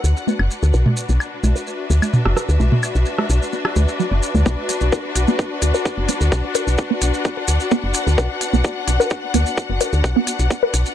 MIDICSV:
0, 0, Header, 1, 5, 480
1, 0, Start_track
1, 0, Key_signature, 2, "minor"
1, 0, Tempo, 465116
1, 762, Time_signature, 4, 2, 24, 8
1, 11295, End_track
2, 0, Start_track
2, 0, Title_t, "String section"
2, 0, Program_c, 0, 48
2, 0, Note_on_c, 0, 62, 85
2, 0, Note_on_c, 0, 66, 78
2, 0, Note_on_c, 0, 71, 69
2, 0, Note_on_c, 0, 78, 68
2, 1438, Note_on_c, 0, 76, 65
2, 1584, Note_off_c, 0, 78, 0
2, 5158, Note_on_c, 0, 78, 80
2, 6019, Note_off_c, 0, 76, 0
2, 11295, Note_off_c, 0, 62, 0
2, 11295, Note_off_c, 0, 66, 0
2, 11295, Note_off_c, 0, 71, 0
2, 11295, Note_off_c, 0, 78, 0
2, 11295, End_track
3, 0, Start_track
3, 0, Title_t, "Synth arpeggio sound"
3, 0, Program_c, 1, 84
3, 282, Note_on_c, 1, 59, 83
3, 324, Note_off_c, 1, 59, 0
3, 762, Note_on_c, 1, 71, 98
3, 804, Note_off_c, 1, 71, 0
3, 1127, Note_on_c, 1, 59, 74
3, 1166, Note_off_c, 1, 59, 0
3, 1606, Note_on_c, 1, 71, 93
3, 1645, Note_off_c, 1, 71, 0
3, 1961, Note_on_c, 1, 59, 76
3, 2004, Note_off_c, 1, 59, 0
3, 2442, Note_on_c, 1, 71, 99
3, 2484, Note_off_c, 1, 71, 0
3, 2808, Note_on_c, 1, 59, 79
3, 2846, Note_off_c, 1, 59, 0
3, 3288, Note_on_c, 1, 71, 103
3, 3326, Note_off_c, 1, 71, 0
3, 3642, Note_on_c, 1, 59, 78
3, 3684, Note_off_c, 1, 59, 0
3, 4122, Note_on_c, 1, 54, 81
3, 4164, Note_off_c, 1, 54, 0
3, 4487, Note_on_c, 1, 59, 75
3, 4510, Note_off_c, 1, 59, 0
3, 4603, Note_on_c, 1, 59, 87
3, 4644, Note_off_c, 1, 59, 0
3, 5083, Note_on_c, 1, 71, 99
3, 5125, Note_off_c, 1, 71, 0
3, 5448, Note_on_c, 1, 59, 75
3, 5486, Note_off_c, 1, 59, 0
3, 5928, Note_on_c, 1, 71, 97
3, 5966, Note_off_c, 1, 71, 0
3, 6282, Note_on_c, 1, 59, 73
3, 6324, Note_off_c, 1, 59, 0
3, 6761, Note_on_c, 1, 71, 106
3, 6803, Note_off_c, 1, 71, 0
3, 7127, Note_on_c, 1, 59, 78
3, 7166, Note_off_c, 1, 59, 0
3, 7607, Note_on_c, 1, 71, 99
3, 7646, Note_off_c, 1, 71, 0
3, 7962, Note_on_c, 1, 59, 87
3, 8004, Note_off_c, 1, 59, 0
3, 8441, Note_on_c, 1, 71, 104
3, 8484, Note_off_c, 1, 71, 0
3, 8807, Note_on_c, 1, 59, 80
3, 8845, Note_off_c, 1, 59, 0
3, 9287, Note_on_c, 1, 71, 96
3, 9326, Note_off_c, 1, 71, 0
3, 9641, Note_on_c, 1, 59, 76
3, 9684, Note_off_c, 1, 59, 0
3, 10121, Note_on_c, 1, 71, 96
3, 10164, Note_off_c, 1, 71, 0
3, 10488, Note_on_c, 1, 59, 76
3, 10526, Note_off_c, 1, 59, 0
3, 10968, Note_on_c, 1, 71, 100
3, 11006, Note_off_c, 1, 71, 0
3, 11295, End_track
4, 0, Start_track
4, 0, Title_t, "FM bass"
4, 0, Program_c, 2, 39
4, 41, Note_on_c, 2, 38, 78
4, 146, Note_off_c, 2, 38, 0
4, 407, Note_on_c, 2, 30, 81
4, 502, Note_off_c, 2, 30, 0
4, 647, Note_on_c, 2, 38, 101
4, 743, Note_off_c, 2, 38, 0
4, 762, Note_on_c, 2, 35, 100
4, 867, Note_off_c, 2, 35, 0
4, 1127, Note_on_c, 2, 35, 79
4, 1223, Note_off_c, 2, 35, 0
4, 1481, Note_on_c, 2, 35, 76
4, 1586, Note_off_c, 2, 35, 0
4, 1962, Note_on_c, 2, 38, 83
4, 2066, Note_off_c, 2, 38, 0
4, 2328, Note_on_c, 2, 30, 82
4, 2423, Note_off_c, 2, 30, 0
4, 2567, Note_on_c, 2, 38, 98
4, 2663, Note_off_c, 2, 38, 0
4, 2682, Note_on_c, 2, 35, 103
4, 2787, Note_off_c, 2, 35, 0
4, 3048, Note_on_c, 2, 35, 81
4, 3143, Note_off_c, 2, 35, 0
4, 3402, Note_on_c, 2, 35, 83
4, 3506, Note_off_c, 2, 35, 0
4, 3882, Note_on_c, 2, 38, 82
4, 3986, Note_off_c, 2, 38, 0
4, 4246, Note_on_c, 2, 30, 84
4, 4342, Note_off_c, 2, 30, 0
4, 4486, Note_on_c, 2, 38, 99
4, 4582, Note_off_c, 2, 38, 0
4, 4602, Note_on_c, 2, 35, 99
4, 4706, Note_off_c, 2, 35, 0
4, 4967, Note_on_c, 2, 35, 81
4, 5063, Note_off_c, 2, 35, 0
4, 5321, Note_on_c, 2, 35, 78
4, 5426, Note_off_c, 2, 35, 0
4, 5801, Note_on_c, 2, 38, 83
4, 5906, Note_off_c, 2, 38, 0
4, 6167, Note_on_c, 2, 30, 83
4, 6263, Note_off_c, 2, 30, 0
4, 6408, Note_on_c, 2, 38, 105
4, 6503, Note_off_c, 2, 38, 0
4, 6522, Note_on_c, 2, 35, 104
4, 6627, Note_off_c, 2, 35, 0
4, 6887, Note_on_c, 2, 35, 83
4, 6982, Note_off_c, 2, 35, 0
4, 7241, Note_on_c, 2, 35, 78
4, 7346, Note_off_c, 2, 35, 0
4, 7720, Note_on_c, 2, 38, 81
4, 7826, Note_off_c, 2, 38, 0
4, 8088, Note_on_c, 2, 30, 84
4, 8183, Note_off_c, 2, 30, 0
4, 8327, Note_on_c, 2, 38, 106
4, 8423, Note_off_c, 2, 38, 0
4, 8442, Note_on_c, 2, 35, 97
4, 8546, Note_off_c, 2, 35, 0
4, 8807, Note_on_c, 2, 35, 82
4, 8902, Note_off_c, 2, 35, 0
4, 9161, Note_on_c, 2, 35, 83
4, 9266, Note_off_c, 2, 35, 0
4, 9641, Note_on_c, 2, 38, 86
4, 9746, Note_off_c, 2, 38, 0
4, 10007, Note_on_c, 2, 30, 82
4, 10102, Note_off_c, 2, 30, 0
4, 10247, Note_on_c, 2, 38, 106
4, 10343, Note_off_c, 2, 38, 0
4, 10361, Note_on_c, 2, 35, 99
4, 10466, Note_off_c, 2, 35, 0
4, 10727, Note_on_c, 2, 35, 82
4, 10822, Note_off_c, 2, 35, 0
4, 11081, Note_on_c, 2, 35, 84
4, 11186, Note_off_c, 2, 35, 0
4, 11295, End_track
5, 0, Start_track
5, 0, Title_t, "Drums"
5, 44, Note_on_c, 9, 70, 92
5, 147, Note_off_c, 9, 70, 0
5, 175, Note_on_c, 9, 70, 52
5, 278, Note_off_c, 9, 70, 0
5, 281, Note_on_c, 9, 63, 44
5, 292, Note_on_c, 9, 70, 42
5, 385, Note_off_c, 9, 63, 0
5, 395, Note_off_c, 9, 70, 0
5, 407, Note_on_c, 9, 76, 57
5, 510, Note_off_c, 9, 76, 0
5, 524, Note_on_c, 9, 70, 79
5, 627, Note_off_c, 9, 70, 0
5, 648, Note_on_c, 9, 70, 56
5, 751, Note_off_c, 9, 70, 0
5, 758, Note_on_c, 9, 70, 36
5, 861, Note_off_c, 9, 70, 0
5, 887, Note_on_c, 9, 47, 72
5, 887, Note_on_c, 9, 63, 44
5, 990, Note_off_c, 9, 47, 0
5, 990, Note_off_c, 9, 63, 0
5, 999, Note_on_c, 9, 70, 86
5, 1102, Note_off_c, 9, 70, 0
5, 1125, Note_on_c, 9, 70, 46
5, 1228, Note_off_c, 9, 70, 0
5, 1241, Note_on_c, 9, 76, 57
5, 1248, Note_on_c, 9, 70, 35
5, 1344, Note_off_c, 9, 76, 0
5, 1351, Note_off_c, 9, 70, 0
5, 1481, Note_on_c, 9, 70, 90
5, 1482, Note_on_c, 9, 63, 44
5, 1585, Note_off_c, 9, 63, 0
5, 1585, Note_off_c, 9, 70, 0
5, 1611, Note_on_c, 9, 70, 55
5, 1714, Note_off_c, 9, 70, 0
5, 1724, Note_on_c, 9, 70, 35
5, 1827, Note_off_c, 9, 70, 0
5, 1964, Note_on_c, 9, 70, 91
5, 2067, Note_off_c, 9, 70, 0
5, 2088, Note_on_c, 9, 63, 42
5, 2088, Note_on_c, 9, 76, 56
5, 2090, Note_on_c, 9, 70, 50
5, 2191, Note_off_c, 9, 63, 0
5, 2191, Note_off_c, 9, 76, 0
5, 2193, Note_off_c, 9, 70, 0
5, 2203, Note_on_c, 9, 47, 78
5, 2203, Note_on_c, 9, 70, 40
5, 2306, Note_off_c, 9, 47, 0
5, 2306, Note_off_c, 9, 70, 0
5, 2327, Note_on_c, 9, 37, 59
5, 2430, Note_off_c, 9, 37, 0
5, 2441, Note_on_c, 9, 37, 58
5, 2446, Note_on_c, 9, 70, 96
5, 2545, Note_off_c, 9, 37, 0
5, 2549, Note_off_c, 9, 70, 0
5, 2571, Note_on_c, 9, 70, 57
5, 2674, Note_off_c, 9, 70, 0
5, 2682, Note_on_c, 9, 63, 44
5, 2688, Note_on_c, 9, 70, 36
5, 2785, Note_off_c, 9, 63, 0
5, 2791, Note_off_c, 9, 70, 0
5, 2806, Note_on_c, 9, 47, 70
5, 2910, Note_off_c, 9, 47, 0
5, 2921, Note_on_c, 9, 70, 83
5, 2921, Note_on_c, 9, 76, 60
5, 3024, Note_off_c, 9, 70, 0
5, 3024, Note_off_c, 9, 76, 0
5, 3048, Note_on_c, 9, 70, 47
5, 3152, Note_off_c, 9, 70, 0
5, 3153, Note_on_c, 9, 70, 39
5, 3256, Note_off_c, 9, 70, 0
5, 3286, Note_on_c, 9, 37, 49
5, 3286, Note_on_c, 9, 63, 42
5, 3390, Note_off_c, 9, 37, 0
5, 3390, Note_off_c, 9, 63, 0
5, 3402, Note_on_c, 9, 70, 95
5, 3505, Note_off_c, 9, 70, 0
5, 3536, Note_on_c, 9, 70, 49
5, 3639, Note_off_c, 9, 70, 0
5, 3640, Note_on_c, 9, 70, 33
5, 3743, Note_off_c, 9, 70, 0
5, 3766, Note_on_c, 9, 37, 54
5, 3766, Note_on_c, 9, 76, 57
5, 3869, Note_off_c, 9, 37, 0
5, 3869, Note_off_c, 9, 76, 0
5, 3879, Note_on_c, 9, 63, 47
5, 3880, Note_on_c, 9, 70, 92
5, 3983, Note_off_c, 9, 63, 0
5, 3983, Note_off_c, 9, 70, 0
5, 4007, Note_on_c, 9, 70, 50
5, 4110, Note_off_c, 9, 70, 0
5, 4126, Note_on_c, 9, 70, 37
5, 4229, Note_off_c, 9, 70, 0
5, 4362, Note_on_c, 9, 70, 90
5, 4465, Note_off_c, 9, 70, 0
5, 4486, Note_on_c, 9, 63, 44
5, 4490, Note_on_c, 9, 70, 46
5, 4589, Note_off_c, 9, 63, 0
5, 4593, Note_off_c, 9, 70, 0
5, 4602, Note_on_c, 9, 36, 114
5, 4604, Note_on_c, 9, 70, 40
5, 4705, Note_off_c, 9, 36, 0
5, 4707, Note_off_c, 9, 70, 0
5, 4840, Note_on_c, 9, 46, 88
5, 4843, Note_on_c, 9, 70, 89
5, 4943, Note_off_c, 9, 46, 0
5, 4946, Note_off_c, 9, 70, 0
5, 4961, Note_on_c, 9, 70, 51
5, 5065, Note_off_c, 9, 70, 0
5, 5082, Note_on_c, 9, 36, 113
5, 5084, Note_on_c, 9, 70, 40
5, 5185, Note_off_c, 9, 36, 0
5, 5187, Note_off_c, 9, 70, 0
5, 5320, Note_on_c, 9, 46, 90
5, 5322, Note_on_c, 9, 70, 93
5, 5423, Note_off_c, 9, 46, 0
5, 5425, Note_off_c, 9, 70, 0
5, 5444, Note_on_c, 9, 70, 46
5, 5547, Note_off_c, 9, 70, 0
5, 5562, Note_on_c, 9, 36, 114
5, 5566, Note_on_c, 9, 70, 34
5, 5665, Note_off_c, 9, 36, 0
5, 5669, Note_off_c, 9, 70, 0
5, 5800, Note_on_c, 9, 46, 79
5, 5800, Note_on_c, 9, 70, 92
5, 5903, Note_off_c, 9, 70, 0
5, 5904, Note_off_c, 9, 46, 0
5, 5926, Note_on_c, 9, 70, 51
5, 6029, Note_off_c, 9, 70, 0
5, 6042, Note_on_c, 9, 36, 109
5, 6046, Note_on_c, 9, 70, 38
5, 6145, Note_off_c, 9, 36, 0
5, 6149, Note_off_c, 9, 70, 0
5, 6280, Note_on_c, 9, 46, 82
5, 6282, Note_on_c, 9, 70, 85
5, 6383, Note_off_c, 9, 46, 0
5, 6385, Note_off_c, 9, 70, 0
5, 6407, Note_on_c, 9, 70, 55
5, 6510, Note_off_c, 9, 70, 0
5, 6522, Note_on_c, 9, 36, 117
5, 6526, Note_on_c, 9, 70, 38
5, 6625, Note_off_c, 9, 36, 0
5, 6629, Note_off_c, 9, 70, 0
5, 6758, Note_on_c, 9, 70, 93
5, 6760, Note_on_c, 9, 46, 88
5, 6861, Note_off_c, 9, 70, 0
5, 6863, Note_off_c, 9, 46, 0
5, 6889, Note_on_c, 9, 70, 52
5, 6992, Note_off_c, 9, 70, 0
5, 6994, Note_on_c, 9, 70, 41
5, 7002, Note_on_c, 9, 36, 125
5, 7097, Note_off_c, 9, 70, 0
5, 7105, Note_off_c, 9, 36, 0
5, 7239, Note_on_c, 9, 70, 84
5, 7241, Note_on_c, 9, 46, 90
5, 7342, Note_off_c, 9, 70, 0
5, 7344, Note_off_c, 9, 46, 0
5, 7368, Note_on_c, 9, 70, 54
5, 7471, Note_off_c, 9, 70, 0
5, 7480, Note_on_c, 9, 70, 39
5, 7482, Note_on_c, 9, 36, 120
5, 7583, Note_off_c, 9, 70, 0
5, 7585, Note_off_c, 9, 36, 0
5, 7716, Note_on_c, 9, 70, 105
5, 7720, Note_on_c, 9, 46, 86
5, 7820, Note_off_c, 9, 70, 0
5, 7823, Note_off_c, 9, 46, 0
5, 7845, Note_on_c, 9, 70, 54
5, 7949, Note_off_c, 9, 70, 0
5, 7959, Note_on_c, 9, 70, 42
5, 7962, Note_on_c, 9, 36, 108
5, 8062, Note_off_c, 9, 70, 0
5, 8065, Note_off_c, 9, 36, 0
5, 8193, Note_on_c, 9, 70, 99
5, 8200, Note_on_c, 9, 46, 95
5, 8296, Note_off_c, 9, 70, 0
5, 8303, Note_off_c, 9, 46, 0
5, 8333, Note_on_c, 9, 70, 51
5, 8436, Note_off_c, 9, 70, 0
5, 8442, Note_on_c, 9, 36, 124
5, 8447, Note_on_c, 9, 70, 40
5, 8545, Note_off_c, 9, 36, 0
5, 8550, Note_off_c, 9, 70, 0
5, 8680, Note_on_c, 9, 46, 93
5, 8684, Note_on_c, 9, 70, 86
5, 8783, Note_off_c, 9, 46, 0
5, 8787, Note_off_c, 9, 70, 0
5, 8810, Note_on_c, 9, 70, 49
5, 8913, Note_off_c, 9, 70, 0
5, 8919, Note_on_c, 9, 70, 38
5, 8921, Note_on_c, 9, 36, 125
5, 9022, Note_off_c, 9, 70, 0
5, 9025, Note_off_c, 9, 36, 0
5, 9160, Note_on_c, 9, 46, 92
5, 9164, Note_on_c, 9, 70, 85
5, 9263, Note_off_c, 9, 46, 0
5, 9267, Note_off_c, 9, 70, 0
5, 9293, Note_on_c, 9, 70, 52
5, 9391, Note_off_c, 9, 70, 0
5, 9391, Note_on_c, 9, 70, 40
5, 9401, Note_on_c, 9, 36, 117
5, 9495, Note_off_c, 9, 70, 0
5, 9504, Note_off_c, 9, 36, 0
5, 9640, Note_on_c, 9, 46, 94
5, 9644, Note_on_c, 9, 70, 88
5, 9743, Note_off_c, 9, 46, 0
5, 9747, Note_off_c, 9, 70, 0
5, 9766, Note_on_c, 9, 70, 50
5, 9869, Note_off_c, 9, 70, 0
5, 9881, Note_on_c, 9, 36, 120
5, 9881, Note_on_c, 9, 70, 42
5, 9984, Note_off_c, 9, 70, 0
5, 9985, Note_off_c, 9, 36, 0
5, 10121, Note_on_c, 9, 46, 92
5, 10121, Note_on_c, 9, 70, 86
5, 10224, Note_off_c, 9, 46, 0
5, 10224, Note_off_c, 9, 70, 0
5, 10247, Note_on_c, 9, 70, 50
5, 10350, Note_off_c, 9, 70, 0
5, 10361, Note_on_c, 9, 36, 120
5, 10368, Note_on_c, 9, 70, 37
5, 10464, Note_off_c, 9, 36, 0
5, 10471, Note_off_c, 9, 70, 0
5, 10599, Note_on_c, 9, 46, 90
5, 10604, Note_on_c, 9, 70, 90
5, 10703, Note_off_c, 9, 46, 0
5, 10707, Note_off_c, 9, 70, 0
5, 10726, Note_on_c, 9, 70, 50
5, 10727, Note_on_c, 9, 46, 39
5, 10829, Note_off_c, 9, 70, 0
5, 10830, Note_off_c, 9, 46, 0
5, 10841, Note_on_c, 9, 36, 118
5, 10845, Note_on_c, 9, 70, 43
5, 10944, Note_off_c, 9, 36, 0
5, 10948, Note_off_c, 9, 70, 0
5, 11081, Note_on_c, 9, 46, 94
5, 11083, Note_on_c, 9, 70, 104
5, 11184, Note_off_c, 9, 46, 0
5, 11186, Note_off_c, 9, 70, 0
5, 11205, Note_on_c, 9, 70, 53
5, 11295, Note_off_c, 9, 70, 0
5, 11295, End_track
0, 0, End_of_file